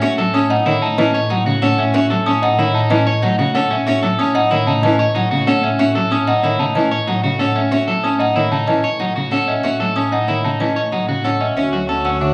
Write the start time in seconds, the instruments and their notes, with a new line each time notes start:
Already playing: double bass section A2
0.02 cello C#4, clean electric guitar F#4, marimba E5
0.18 cello F#3, clean electric guitar A4
0.34 clean electric guitar C#4, cello C#4, marimba A5, celesta D#6
0.50 clean electric guitar D#4, celesta D#5, marimba F#5
0.66 cello D#3, clean electric guitar E4, marimba C#5
0.82 clean electric guitar D#4, celesta A5
0.98 cello E3, clean electric guitar C#4, celesta D#5, marimba A5
1.14 clean electric guitar C#5, marimba D#5
1.30 cello F#3, clean electric guitar D#4, marimba F#5
1.46 cello C#3, clean electric guitar F#4
1.62 cello C#4, clean electric guitar A4, marimba C#5, celesta F#5
1.78 clean electric guitar C#4, marimba E5
1.94 cello C#4, clean electric guitar F#4, marimba E5
2.10 cello F#3, clean electric guitar A4
2.26 cello C#4, clean electric guitar C#4, marimba A5, celesta D#6
2.42 clean electric guitar D#4, celesta D#5, marimba F#5
2.58 cello D#3, clean electric guitar E4, marimba C#5
2.75 clean electric guitar D#4, celesta A5
2.90 cello E3, clean electric guitar C#4, celesta D#5, marimba A5
3.07 clean electric guitar C#5, marimba D#5
3.22 cello F#3, clean electric guitar D#4, marimba F#5
3.38 cello C#3, clean electric guitar F#4
3.55 cello C#4, clean electric guitar A4, marimba C#5, celesta F#5
3.71 clean electric guitar C#4, marimba E5
3.87 cello C#4, clean electric guitar F#4, marimba E5
4.03 cello F#3, clean electric guitar A4
4.19 clean electric guitar C#4, cello C#4, marimba A5, celesta D#6
4.35 clean electric guitar D#4, celesta D#5, marimba F#5
4.51 cello D#3, clean electric guitar E4, marimba C#5
4.67 cello C#3, clean electric guitar D#4, celesta A5
4.83 cello E3, clean electric guitar C#4, celesta D#5, marimba A5
4.99 clean electric guitar C#5, marimba D#5
5.15 cello F#3, clean electric guitar D#4, marimba F#5
5.31 cello C#3, clean electric guitar F#4
5.47 cello C#4, clean electric guitar A4, marimba C#5, celesta F#5
5.63 clean electric guitar C#4, marimba E5
5.79 cello C#4, clean electric guitar F#4, marimba E5
5.95 cello F#3, clean electric guitar A4
6.11 cello C#4, clean electric guitar C#4, marimba A5, celesta D#6
6.27 clean electric guitar D#4, celesta D#5, marimba F#5
6.43 cello D#3, clean electric guitar E4, marimba C#5
6.59 cello C#3, clean electric guitar D#4, celesta A5
6.75 cello E3, clean electric guitar C#4, celesta D#5, marimba A5
6.91 clean electric guitar C#5, marimba D#5
7.07 cello F#3, clean electric guitar D#4, marimba F#5
7.24 cello C#3, clean electric guitar F#4
7.39 cello C#4, clean electric guitar A4, marimba C#5, celesta F#5
7.56 clean electric guitar C#4, marimba E5
7.71 cello C#4, clean electric guitar F#4, marimba E5
7.88 cello F#3, clean electric guitar A4
8.03 clean electric guitar C#4, cello C#4, marimba A5, celesta D#6
8.19 clean electric guitar D#4, celesta D#5, marimba F#5
8.36 cello D#3, clean electric guitar E4, marimba C#5
8.52 cello C#3, clean electric guitar D#4, celesta A5
8.67 cello E3, clean electric guitar C#4, celesta D#5, marimba A5
8.83 clean electric guitar C#5, marimba D#5
9.00 cello F#3, clean electric guitar D#4, marimba F#5
9.16 cello C#3, clean electric guitar F#4
9.31 cello C#4, clean electric guitar A4, marimba C#5, celesta F#5
9.48 clean electric guitar C#4, celesta D#5, marimba E5
9.64 cello C#4, clean electric guitar F#4, marimba E5
9.80 cello F#3, clean electric guitar A4
9.96 cello C#4, clean electric guitar C#4, marimba A5, celesta D#6
10.12 clean electric guitar D#4, celesta D#5, marimba F#5
10.28 cello D#3, clean electric guitar E4, marimba C#5
10.44 cello C#3, clean electric guitar D#4, celesta A5
10.60 cello E3, clean electric guitar C#4, celesta D#5, marimba A5
10.76 clean electric guitar C#5, marimba D#5
10.92 cello F#3, clean electric guitar D#4, marimba F#5
11.08 cello C#3, clean electric guitar F#4
11.24 cello C#4, clean electric guitar A4, marimba C#5, celesta F#5
11.40 clean electric guitar C#4, celesta D#5, marimba E5
11.56 double bass section D2, clean electric guitar C#4, cello C#4, violin section F#4 C#5, soprano saxophone F#4, marimba E5
11.73 cello F#3, clean electric guitar F#4
11.89 cello C#4, clean electric guitar A4, marimba A5
12.05 clean electric guitar C#4, marimba F#5, celesta E6
12.21 cello D3, clean electric guitar D4, marimba C#5, celesta E5